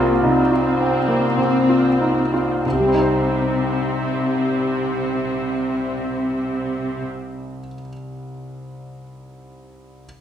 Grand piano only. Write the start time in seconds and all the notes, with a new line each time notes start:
Already playing: C2 C4 F4
0.23 D#4
0.52 F4
0.81 C4
1.08 A#3
1.38 C4
1.69 F4
2.01 D#4
2.34 F4
2.66 C2
2.73 C3
2.80 G3
2.86 C4
2.94 D#4
3.00 C5